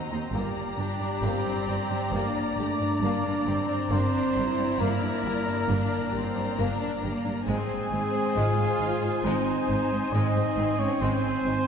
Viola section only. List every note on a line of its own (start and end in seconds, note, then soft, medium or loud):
0.00 0.33 C4 medium
0.34 0.78 A#3 medium
0.78 1.22 D4 medium
1.23 2.13 C4 medium
2.14 2.58 A#3 medium
2.57 3.02 A3 medium
3.03 3.46 A#3 medium
3.48 3.92 C4 medium
3.93 4.36 D4 medium
4.38 5.71 E4 medium
5.71 6.14 D4 medium
6.15 6.58 C4 medium
6.60 7.04 D4 medium
7.05 7.48 A#3 medium
7.49 7.92 C4 medium
7.94 8.36 C4 medium
8.38 9.26 F4 medium
9.26 10.14 D#4 medium
10.12 11.67 C4 medium